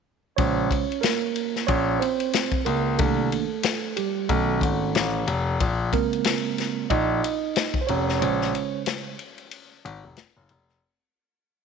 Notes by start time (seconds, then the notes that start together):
0.36 A#1 C#3 G#3 C#4 C5 C#5, kick, ride
0.71 kick, ride
0.92 ride
1.01 A#3 A#4, snare, hi-hat pedal, ride
1.36 ride
1.56 snare
1.67 A#1 C#4 C#5, kick, ride
2.00 C4 C5, ride
2.20 ride
2.33 snare, hi-hat pedal, ride
2.52 kick
2.65 C#2 A#3 A#4, ride
2.98 C2 D#3 A3 A#3 D4 A4, kick, ride
3.32 ride
3.63 snare, hi-hat pedal, ride
3.97 G3 G4, ride
4.29 B1 D#3 A3 C#4 A4, kick, ride
4.61 G#1, kick, ride
4.95 A1, snare, hi-hat pedal, ride
5.27 F1, ride
5.60 A#1, kick, ride
5.92 C#3 G#3 A#3 C4 A#4, kick, ride
6.13 ride
6.24 snare, hi-hat pedal, ride
6.58 snare, ride
6.90 A#1 D#4 D#5, kick, ride
7.24 ride
7.56 snare, hi-hat pedal, ride
7.74 kick
7.81 C5
7.87 F1 C#4 C#5, ride
8.09 snare
8.19 A#1 C#3 G#3 C#4 C5 C#5, ride
8.42 snare
8.55 ride
8.86 snare, hi-hat pedal, ride
9.19 ride
9.38 ride
9.51 ride
9.85 G#1, ride
10.04 F1
10.17 snare, hi-hat pedal, ride
10.37 F#1
10.49 F1, ride
10.69 snare